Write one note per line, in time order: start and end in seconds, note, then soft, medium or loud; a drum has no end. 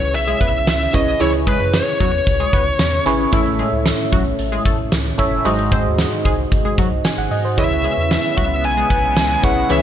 0.00 0.16 C#2 loud
0.00 1.20 C#3 medium
0.00 0.93 C#4 medium
0.00 0.93 E4 medium
0.00 0.94 G#4 medium
0.00 0.94 B4 medium
0.00 0.15 C#5 loud
0.00 0.94 C#5 medium
0.15 0.34 B1 loud
0.15 0.68 E5 loud
0.15 closed hi-hat loud
0.27 0.38 G#3 medium
0.27 0.38 G#4 loud
0.27 closed hi-hat medium
0.41 0.69 B1 loud
0.41 0.51 B3 medium
0.41 0.51 B4 loud
0.41 kick medium
0.41 closed hi-hat medium
0.67 0.87 C#2 loud
0.67 0.95 E5 loud
0.67 snare loud
0.67 closed hi-hat loud
0.67 tambourine medium
0.93 1.14 B1 medium
0.93 1.18 C#4 medium
0.93 1.18 E4 medium
0.93 1.18 G#4 medium
0.93 1.18 B4 medium
0.93 1.19 C#5 medium
0.93 1.21 D#5 medium
0.93 kick loud
0.93 closed hi-hat medium
1.20 1.50 C#2 loud
1.20 1.96 C#3 medium
1.20 1.31 E3 loud
1.20 2.17 C#4 medium
1.20 2.18 E4 medium
1.20 1.31 E4 loud
1.20 2.18 G#4 medium
1.20 2.18 B4 medium
1.20 2.18 C#5 medium
1.20 1.28 C#5 loud
1.20 closed hi-hat loud
1.34 closed hi-hat medium
1.47 1.58 G#3 medium
1.47 1.58 G#4 loud
1.47 1.72 B4 medium
1.47 kick loud
1.47 closed hi-hat medium
1.60 1.80 F#2 medium
1.74 3.03 C#5 medium
1.74 snare loud
1.74 closed hi-hat loud
1.74 tambourine medium
2.00 2.20 E2 loud
2.00 2.11 F#3 medium
2.00 2.11 F#4 loud
2.00 kick medium
2.00 closed hi-hat medium
2.27 2.47 C#2 loud
2.27 kick loud
2.27 closed hi-hat medium
2.40 2.51 G#3 medium
2.40 2.51 G#4 loud
2.40 closed hi-hat medium
2.53 2.73 C#2 medium
2.53 2.64 B3 medium
2.53 2.64 B4 medium
2.53 kick loud
2.53 closed hi-hat medium
2.79 3.00 E2 loud
2.79 snare loud
2.79 closed hi-hat medium
2.79 tambourine medium
3.06 3.26 G#1 loud
3.06 3.30 C#4 loud
3.06 3.31 E4 medium
3.06 3.31 G#4 medium
3.06 3.31 B4 medium
3.06 3.31 C#5 loud
3.06 closed hi-hat medium
3.32 3.63 A1 loud
3.32 4.08 A2 medium
3.32 3.43 E3 loud
3.32 4.30 C#4 medium
3.32 4.30 E4 medium
3.32 3.43 E4 loud
3.32 4.30 A4 medium
3.32 4.30 C#5 medium
3.32 4.30 E5 loud
3.32 kick loud
3.32 closed hi-hat loud
3.46 closed hi-hat medium
3.59 3.70 G#3 medium
3.59 3.70 G#4 loud
3.59 closed hi-hat medium
3.72 3.92 C#2 medium
3.86 snare loud
3.86 closed hi-hat loud
3.86 tambourine medium
4.12 4.33 B1 loud
4.12 4.23 F#3 medium
4.12 4.23 F#4 loud
4.12 kick medium
4.12 closed hi-hat medium
4.39 4.59 A1 loud
4.39 closed hi-hat medium
4.52 4.63 G#3 medium
4.52 4.63 G#4 loud
4.52 closed hi-hat medium
4.65 4.86 A1 medium
4.65 4.76 A3 medium
4.65 4.76 A4 loud
4.65 kick loud
4.65 closed hi-hat medium
4.92 5.12 C#2 loud
4.92 snare loud
4.92 closed hi-hat medium
4.92 tambourine medium
5.18 5.39 F#1 medium
5.18 5.43 C#4 medium
5.18 5.43 E4 medium
5.18 5.43 A4 medium
5.18 5.43 C#5 medium
5.18 5.43 E5 loud
5.18 kick loud
5.18 closed hi-hat medium
5.45 5.87 G#1 loud
5.45 6.21 G#2 medium
5.45 5.56 F#3 loud
5.45 6.42 D#4 medium
5.45 6.43 F#4 medium
5.45 5.56 F#4 loud
5.45 6.43 G#4 medium
5.45 6.43 C5 medium
5.45 6.43 D#5 loud
5.45 closed hi-hat loud
5.59 closed hi-hat medium
5.72 5.82 C4 medium
5.72 5.82 C5 medium
5.72 kick loud
5.72 closed hi-hat medium
5.85 6.05 D#2 loud
5.98 snare loud
5.98 closed hi-hat loud
5.98 tambourine medium
6.25 6.45 C2 medium
6.25 6.36 G#3 medium
6.25 6.36 G#4 loud
6.25 kick medium
6.25 closed hi-hat medium
6.52 6.62 G#1 loud
6.52 kick loud
6.52 closed hi-hat medium
6.65 6.75 G#1 medium
6.65 6.76 G#3 medium
6.65 6.76 G#4 loud
6.78 6.89 F#3 medium
6.78 6.89 F#4 loud
6.78 kick loud
6.78 closed hi-hat medium
6.91 7.01 C2 medium
7.04 7.10 G#1 medium
7.04 7.17 G#5 medium
7.04 snare loud
7.04 closed hi-hat loud
7.04 tambourine medium
7.18 7.28 G#1 medium
7.18 7.31 F#5 medium
7.31 7.59 G#2 medium
7.31 7.44 D#5 medium
7.31 open hi-hat medium
7.45 7.70 C5 medium
7.57 7.88 C#2 loud
7.57 9.82 C#3 medium
7.57 8.34 C#3 medium
7.57 7.68 E3 loud
7.57 9.82 G#3 medium
7.57 9.68 B3 medium
7.57 8.55 C#4 medium
7.57 9.82 E4 medium
7.57 7.68 E4 loud
7.57 8.55 E4 medium
7.57 8.55 G#4 medium
7.57 8.55 B4 medium
7.57 8.56 C#5 medium
7.57 8.10 E5 loud
7.57 kick loud
7.57 closed hi-hat loud
7.71 closed hi-hat medium
7.84 7.95 G#3 medium
7.84 7.95 G#4 medium
7.84 closed hi-hat medium
7.98 8.17 E2 medium
8.11 8.66 E5 loud
8.11 snare loud
8.11 closed hi-hat loud
8.11 tambourine medium
8.37 8.65 C#2 loud
8.37 8.48 F#3 medium
8.37 8.48 F#4 loud
8.37 kick medium
8.37 closed hi-hat medium
8.64 8.84 B1 loud
8.64 9.44 G#5 loud
8.64 closed hi-hat medium
8.77 8.88 G#3 medium
8.77 8.88 G#4 loud
8.77 closed hi-hat medium
8.90 9.18 B1 medium
8.90 9.01 B3 medium
8.90 9.01 B4 loud
8.90 kick medium
8.90 closed hi-hat medium
9.17 9.37 C#2 loud
9.17 snare loud
9.17 closed hi-hat loud
9.17 tambourine medium
9.43 9.63 B1 medium
9.43 9.68 C#4 medium
9.43 9.68 E4 medium
9.43 9.68 G#4 medium
9.43 9.68 B4 medium
9.43 9.68 C#5 medium
9.43 9.69 F#5 loud
9.43 kick medium
9.43 closed hi-hat medium
9.69 9.82 C#2 loud
9.69 9.82 C#3 medium
9.69 9.81 E3 loud
9.69 9.82 C#4 medium
9.69 9.82 E4 medium
9.69 9.81 E4 loud
9.69 9.82 G#4 medium
9.69 9.82 B4 medium
9.69 9.82 C#5 medium
9.69 9.82 E5 loud
9.69 closed hi-hat loud